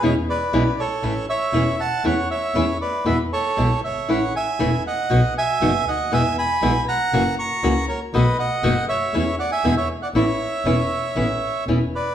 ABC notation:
X:1
M:4/4
L:1/16
Q:1/4=119
K:A
V:1 name="Bandoneon"
[Gc]2 [Bd]4 [Ac]4 [ce]4 [fa]2 | [cf]2 [ce]4 [Bd]2 [Be]2 [Ac]4 [ce]2 | [cf]2 [eg]4 [^df]4 [eg]4 [df]2 | [eg]2 [gb]4 [f_b]4 [^ac']4 [^Ac]2 |
[B^d]2 [df]4 [ce]4 [=df] [eg]2 [ce]2 [df] | [ce]12 z2 [Bd]2 |]
V:2 name="Nylon-string guitar"
[B,,E,G,CE]2 z2 [B,,E,G,CE]2 z2 [E,A,CE]2 z2 [E,A,CE]2 z2 | [E,A,CE]2 z2 [E,A,CE]2 z2 [B,,E,G,B,E]2 z2 [B,,E,G,B,E]2 z2 | [E,A,CE]2 z2 [E,A,CE]2 z2 [B,,F,B,^DF]2 z2 [B,,F,B,DF]2 z2 | [B,,E,G,B,E]2 z2 [B,,E,G,B,E]2 z2 [C,E,^A,CF]2 z2 [C,E,A,CF]2 z2 |
[B,,^D,A,B,F]2 z2 [B,,D,A,B,F]2 z2 [E,A,CE]2 z2 [B,,=D,G,B,E]2 z2 | [E,B,CE]2 z2 [E,B,CE]2 z2 [E,B,CE]2 z2 [E,B,CE]2 z2 |]
V:3 name="Double bass" clef=bass
E,,2 z2 B,,,2 z2 A,,,2 z2 E,,,2 z2 | E,,2 z2 E,,2 z2 E,,2 z2 B,,,2 =G,,,2 | A,,,2 z2 E,,,2 z2 B,,,2 z2 F,,,2 D,,2 | E,,2 z2 B,,,2 z2 F,,,2 z2 C,,2 z2 |
B,,,2 z2 F,,,2 z2 E,,2 z2 E,,2 z2 | A,,,2 z2 E,,,2 z2 A,,,2 z2 E,,,2 z2 |]